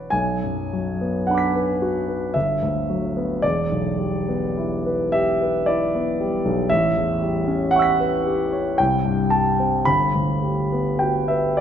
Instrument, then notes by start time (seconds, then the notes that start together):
grand piano
Already playing: B4 C#5 D5
0.10 B1 G#5
0.43 F#2
0.73 F#3
1.01 B3
1.27 D4 F#5
1.31 B5 D6
1.38 B6
1.56 B4
1.82 F#4
2.08 B4
2.34 G1 E5
2.63 D2
2.90 F#3
3.17 B3
3.42 E1 D5
3.72 B1
3.99 G3
4.28 B3
4.57 E4
4.86 B4
5.12 G4 E5
5.41 B4
5.66 E4 D5
5.95 B3
6.20 G3
6.45 B1
6.69 A1 E5
6.96 E2
7.21 G3
7.47 C#4
7.71 E4 F#5 G5
7.76 C#6 E6
7.82 B6
8.00 B4
8.27 G4
8.53 C#5
8.78 C2 G5
9.05 G2
9.30 G3 A5
9.60 C4
9.85 G1 B5
10.15 D2
10.42 G3
10.72 B3
10.99 F#4 G5
11.28 B4 E5
11.57 D5